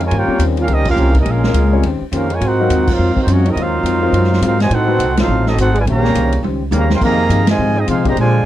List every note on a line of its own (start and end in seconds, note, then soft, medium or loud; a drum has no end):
0.00 0.10 F2 medium
0.00 0.12 G#3 medium
0.00 ride medium
0.04 0.13 F4 medium
0.04 0.14 A#4 medium
0.04 0.14 C#5 medium
0.04 0.14 G#5 loud
0.10 0.27 G2 medium
0.10 0.29 D#3 soft
0.10 0.41 A#3 medium
0.10 0.30 C#4 medium
0.10 0.41 C#4 medium
0.10 0.30 G4 medium
0.10 0.41 G4 medium
0.10 0.31 C5 medium
0.10 ride medium
0.17 0.43 F4 medium
0.17 0.43 A#4 medium
0.17 0.43 C#5 medium
0.17 0.43 G5 loud
0.27 0.66 G3 medium
0.27 0.66 C4 medium
0.27 0.66 C#4 medium
0.27 0.66 F4 medium
0.27 0.67 A#4 medium
0.27 muted upright bass stroke soft
0.39 0.67 D#2 loud
0.39 0.58 D#3 medium
0.39 0.59 C#4 medium
0.39 0.59 G4 medium
0.39 0.59 C5 medium
0.39 hi-hat pedal medium
0.39 ride medium
0.57 0.69 A#3 medium
0.57 0.70 C#4 medium
0.57 0.69 F4 medium
0.57 0.70 G4 medium
0.57 ride medium
0.61 0.70 A#4 medium
0.61 0.70 F5 medium
0.68 0.96 C#2 medium
0.68 0.87 D#3 medium
0.68 0.87 G3 medium
0.68 0.87 A#3 medium
0.68 0.88 C#4 medium
0.68 0.87 D#4 medium
0.68 0.88 G4 medium
0.68 0.88 C5 medium
0.68 ride medium
0.73 0.88 C#4 medium
0.73 0.88 G4 medium
0.73 0.88 A#4 medium
0.73 0.88 D#5 loud
0.85 1.14 A#3 medium
0.85 1.14 C#4 medium
0.85 1.14 F4 medium
0.85 kick medium
0.85 crash medium
0.90 1.15 C#4 medium
0.90 1.15 G4 medium
0.90 1.15 A#4 medium
0.90 1.15 F5 loud
0.96 1.25 C2 loud
0.96 1.16 D#3 medium
0.96 1.16 C#4 medium
0.96 1.17 G4 medium
0.96 1.17 C5 medium
0.96 hi-hat pedal medium
1.14 1.26 G3 medium
1.14 1.26 A#3 medium
1.14 1.27 D#4 medium
1.14 kick medium
1.14 ride medium
1.20 1.28 C#4 medium
1.20 1.29 G4 medium
1.20 1.28 A#4 medium
1.20 1.29 D#5 medium
1.24 1.53 A#1 medium
1.24 1.44 A#2 medium
1.24 1.44 G#3 medium
1.24 1.86 G#3 medium
1.24 1.45 C#4 medium
1.24 1.86 C#4 medium
1.24 1.86 F4 medium
1.24 1.45 F4 medium
1.24 ride medium
1.30 1.88 C#4 medium
1.30 1.88 G#4 medium
1.30 1.88 A#4 medium
1.30 1.88 F5 medium
1.44 1.54 G#3 medium
1.44 1.55 C4 medium
1.44 1.55 C#4 medium
1.44 1.55 F4 medium
1.44 1.55 A#4 medium
1.44 snare medium
1.53 1.82 C#2 medium
1.53 1.73 A#2 medium
1.53 1.73 G#3 medium
1.53 1.74 C#4 medium
1.53 1.74 F4 medium
1.53 hi-hat pedal medium
1.53 ride medium
1.73 1.83 G3 medium
1.73 1.83 C4 medium
1.73 1.83 C#4 medium
1.73 1.83 F4 medium
1.73 1.83 C#5 medium
1.83 1.99 D#2 medium
1.83 2.02 D#3 medium
1.83 2.02 C#4 medium
1.83 2.03 G4 medium
1.83 2.03 C5 medium
1.83 ride medium
2.01 muted upright bass stroke soft
2.12 2.40 F2 medium
2.12 2.31 D#3 medium
2.12 2.28 A#3 medium
2.12 2.29 C#4 medium
2.12 2.31 C#4 medium
2.12 2.28 F4 medium
2.12 2.31 G4 medium
2.12 2.31 C5 medium
2.12 hi-hat pedal medium
2.12 ride medium
2.16 2.31 C#4 medium
2.16 2.31 G4 medium
2.16 2.31 A#4 medium
2.16 2.31 F5 medium
2.28 2.41 G#3 medium
2.28 ride medium
2.33 2.43 F4 medium
2.33 2.43 A#4 medium
2.33 2.43 C#5 medium
2.33 2.43 G#5 medium
2.41 2.69 G#2 medium
2.41 2.60 G#2 medium
2.41 2.60 F#3 medium
2.41 2.86 C4 medium
2.41 2.60 C4 medium
2.41 2.87 D#4 medium
2.41 2.61 F4 medium
2.41 2.87 F#4 medium
2.41 ride medium
2.45 2.90 D#4 medium
2.45 2.90 A#4 medium
2.45 2.90 C5 medium
2.45 2.90 F#5 medium
2.60 2.70 F#3 medium
2.60 2.70 C4 medium
2.60 2.70 D#4 medium
2.60 2.70 F4 medium
2.60 2.70 A#4 medium
2.69 2.98 D#2 medium
2.69 2.88 G#2 medium
2.69 2.89 F#3 medium
2.69 2.89 C4 medium
2.69 2.89 F4 medium
2.69 hi-hat pedal medium
2.69 ride medium
2.87 3.15 F#3 medium
2.87 3.14 C4 medium
2.87 3.16 F4 medium
2.87 kick loud
2.87 crash medium
2.91 3.18 D#4 medium
2.91 3.18 A#4 medium
2.91 3.18 C5 medium
2.91 3.18 F5 medium
2.98 3.15 F2 medium
2.98 3.17 G#2 medium
2.98 3.17 F#3 soft
2.98 3.18 C4 medium
2.98 3.18 F4 medium
3.15 3.26 D#3 medium
3.15 3.27 F#3 medium
3.15 3.26 C4 medium
3.15 muted upright bass stroke soft
3.15 kick medium
3.21 3.29 A#3 medium
3.21 3.29 D#4 medium
3.21 3.29 F#4 medium
3.21 3.30 C5 medium
3.27 3.55 F#2 loud
3.27 3.46 G#2 medium
3.27 3.46 F#3 medium
3.27 3.47 C4 medium
3.27 3.46 C#4 medium
3.27 3.47 F4 medium
3.27 hi-hat pedal medium
3.27 ride medium
3.31 3.47 A#3 medium
3.31 3.47 D#4 medium
3.31 3.47 F#4 medium
3.31 3.47 C#5 medium
3.46 3.56 F#3 medium
3.46 3.56 C4 medium
3.46 3.57 D#4 medium
3.46 ride medium
3.50 3.59 C4 medium
3.50 3.59 F#4 medium
3.50 3.59 A#4 medium
3.50 3.59 D#5 medium
3.55 3.83 D#2 loud
3.55 3.75 G#2 medium
3.55 4.42 F#3 medium
3.55 3.75 F#3 medium
3.55 4.43 C4 loud
3.55 3.76 C4 medium
3.55 4.42 F4 medium
3.55 3.76 F4 medium
3.55 ride medium
3.61 4.45 D#4 medium
3.61 4.45 A#4 medium
3.61 4.45 C5 loud
3.61 4.45 F5 loud
3.83 4.12 F2 loud
3.83 4.03 G#2 medium
3.83 4.03 F#3 medium
3.83 4.04 C4 medium
3.83 4.04 F4 medium
3.83 hi-hat pedal medium
3.83 ride medium
4.02 4.13 F#3 medium
4.02 4.12 C4 medium
4.02 4.13 D#4 medium
4.02 4.13 F4 medium
4.02 4.13 A#4 medium
4.12 4.41 F#2 loud
4.12 4.31 G#2 medium
4.12 4.32 F#3 medium
4.12 4.32 C4 medium
4.12 4.32 F4 medium
4.12 ride medium
4.24 snare soft
4.33 snare medium
4.41 4.60 G#2 medium
4.41 4.70 G#2 loud
4.41 4.61 F#3 medium
4.41 4.59 F#3 medium
4.41 4.61 C4 medium
4.41 4.59 C4 medium
4.41 4.61 F4 medium
4.41 4.59 F4 medium
4.41 hi-hat pedal medium
4.41 ride medium
4.46 4.60 D#4 medium
4.46 4.60 A#4 medium
4.46 4.60 C5 medium
4.46 4.61 F5 loud
4.60 4.71 C3 medium
4.60 4.71 D#3 medium
4.60 4.71 G#3 medium
4.60 4.72 F#4 medium
4.60 4.71 C5 medium
4.60 4.72 D#5 medium
4.60 4.71 G#5 loud
4.60 snare medium
4.60 ride medium
4.70 4.98 A2 loud
4.70 4.89 A2 medium
4.70 4.90 F#3 medium
4.70 5.16 C4 loud
4.70 4.90 C4 medium
4.70 5.17 D#4 loud
4.70 4.91 D#4 medium
4.70 5.17 D#4 loud
4.70 5.18 F#4 loud
4.70 5.17 A4 medium
4.70 5.18 C5 medium
4.70 5.18 F#5 loud
4.70 ride medium
4.87 4.98 A3 medium
4.87 4.98 C4 medium
4.87 4.98 D#4 medium
4.87 4.98 F#4 medium
4.87 4.98 B4 medium
4.99 5.27 C2 loud
4.99 5.18 A2 medium
4.99 5.18 F#3 medium
4.99 5.18 C4 medium
4.99 5.19 D#4 medium
4.99 hi-hat pedal medium
4.99 ride medium
5.17 5.43 F#3 medium
5.17 5.43 C4 medium
5.17 5.45 D#4 medium
5.17 5.44 F4 medium
5.17 5.45 A4 medium
5.17 5.45 C5 medium
5.17 5.45 F5 loud
5.17 snare loud
5.17 ride medium
5.28 5.56 A1 loud
5.28 5.47 A2 soft
5.28 5.47 F#3 medium
5.28 5.48 C4 medium
5.28 5.48 D#4 medium
5.44 5.57 F#3 medium
5.44 5.56 C4 medium
5.44 5.56 D#4 medium
5.44 snare medium
5.48 5.59 C4 medium
5.48 5.59 F#4 medium
5.48 5.59 A4 medium
5.48 5.59 D#5 medium
5.56 5.85 G#1 medium
5.56 5.76 A2 medium
5.56 5.76 F#3 medium
5.56 5.73 C4 medium
5.56 5.77 C4 medium
5.56 5.74 D#4 medium
5.56 5.77 D#4 medium
5.56 5.74 F#4 medium
5.56 hi-hat pedal medium
5.56 ride medium
5.61 5.76 D#4 medium
5.61 5.76 A4 medium
5.61 5.76 C5 medium
5.61 5.76 F#5 loud
5.73 5.79 G#3 medium
5.73 ride medium
5.79 5.83 F4 medium
5.79 5.83 B4 medium
5.79 5.83 D5 medium
5.79 5.83 G#5 loud
5.85 6.14 A#1 medium
5.85 6.42 C#3 loud
5.85 6.04 D#3 medium
5.85 6.42 G3 loud
5.85 6.42 A#3 loud
5.85 6.04 C#4 medium
5.85 6.05 G4 medium
5.85 6.05 C5 medium
5.85 ride medium
5.90 6.44 G4 loud
5.90 6.44 C#5 medium
5.90 6.44 F5 medium
5.90 6.44 A#5 loud
6.02 6.13 A#3 medium
6.02 6.13 C4 medium
6.02 6.13 C#4 medium
6.02 6.14 F4 medium
6.02 6.14 G4 medium
6.02 snare soft
6.14 6.42 C2 medium
6.14 6.33 D#3 medium
6.14 6.33 C#4 medium
6.14 6.33 G4 medium
6.14 6.33 C5 medium
6.14 hi-hat pedal medium
6.14 ride medium
6.32 ride medium
6.42 6.70 C#2 medium
6.42 6.61 D#3 medium
6.42 6.62 C#4 medium
6.42 6.62 G4 medium
6.42 6.63 C5 medium
6.42 high tom medium
6.71 7.00 D#2 medium
6.71 6.89 C#3 medium
6.71 6.91 D#3 medium
6.71 6.88 G3 loud
6.71 6.88 A#3 medium
6.71 6.91 C#4 medium
6.71 6.91 G4 medium
6.71 6.91 C5 medium
6.71 hi-hat pedal medium
6.71 high tom medium
6.77 6.91 G4 medium
6.77 6.91 C#5 medium
6.77 6.91 F5 medium
6.77 6.91 A#5 loud
6.90 7.00 C#3 medium
6.90 7.00 G3 medium
6.90 7.00 C4 medium
6.90 snare medium
6.94 7.03 A#4 medium
6.94 7.03 F5 medium
6.94 7.03 G5 medium
6.94 7.03 C6 loud
7.01 7.29 F2 medium
7.01 7.44 C3 loud
7.01 7.44 D#3 loud
7.01 7.19 F3 soft
7.01 7.44 A#3 medium
7.01 7.20 C4 medium
7.01 7.20 D#4 medium
7.01 7.21 G#4 medium
7.01 7.45 D#5 medium
7.01 7.45 F5 loud
7.01 7.46 A#5 loud
7.01 kick medium
7.01 crash medium
7.05 7.46 G#4 medium
7.29 7.57 G2 loud
7.29 7.48 F3 medium
7.29 7.49 C4 medium
7.29 7.49 D#4 medium
7.29 7.49 G#4 medium
7.29 hi-hat pedal medium
7.29 ride medium
7.46 7.76 C3 medium
7.46 7.75 D#3 loud
7.46 7.75 G#3 medium
7.46 7.77 C5 medium
7.46 7.77 D#5 loud
7.46 7.77 G#5 loud
7.46 snare loud
7.46 ride medium
7.50 7.77 F4 medium
7.58 7.86 G#2 medium
7.58 7.77 F3 soft
7.58 7.77 C4 medium
7.58 7.77 D#4 medium
7.58 7.78 G#4 medium
7.76 7.86 G#3 medium
7.76 7.86 C4 medium
7.76 7.89 C4 medium
7.76 7.87 D#4 medium
7.76 7.89 F4 medium
7.76 7.89 G#4 medium
7.76 7.89 D#5 loud
7.87 8.15 C3 loud
7.87 8.05 F3 medium
7.87 8.04 G#3 medium
7.87 8.04 C4 medium
7.87 8.06 C4 medium
7.87 8.06 D#4 medium
7.87 8.05 D#4 medium
7.87 8.03 F4 medium
7.87 8.06 G#4 medium
7.87 8.05 G#4 medium
7.87 8.05 C5 medium
7.87 8.05 F5 medium
7.87 hi-hat pedal medium
7.87 ride medium
8.04 8.15 G#3 medium
8.04 8.15 A#3 medium
8.04 8.15 C4 medium
8.04 8.15 D4 medium
8.04 8.15 F4 medium
8.04 8.15 G4 medium
8.04 8.17 G4 medium
8.04 8.17 D#5 medium
8.04 8.17 A#5 loud
8.04 kick medium
8.04 ride medium
8.09 8.17 C5 medium
8.15 8.34 A#2 medium
8.15 8.43 A#2 medium
8.15 8.45 D3 medium
8.15 8.45 F3 loud
8.15 8.45 G#3 medium
8.15 8.35 G#3 medium
8.15 8.35 D4 medium
8.15 8.35 G4 medium
8.15 ride medium
8.19 8.45 F4 medium
8.19 8.45 C5 medium
8.19 8.45 D5 medium
8.19 8.45 G#5 loud